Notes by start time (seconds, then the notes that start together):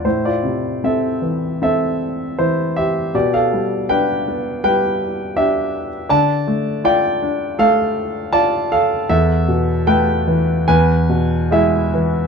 0.05 A2 E4 C5
0.25 F4 D5
0.43 C3
0.84 C4 A4 E5
1.22 E3
1.62 C4 A4 E5
2.38 E3 E4 C5
2.76 G4 E5
3.14 B2 G4 D5
3.34 A4 F5
3.53 G3
3.89 D4 B4 G5
4.28 B3
4.64 G3 B4 G5
5.36 D4 G4 E5
6.09 D3 D5 A5
6.47 A3
6.84 F4 D5 G5
7.22 D4
7.59 A3 A4 F5
8.33 F4 D5 A5
8.72 A4 F5
9.09 E2 A4 E5
9.48 B2
9.87 A3 B4 G5
10.28 E3
10.68 E2 B4 G#5
11.09 B2
11.51 G#3 E4 G#4 E5
11.94 E3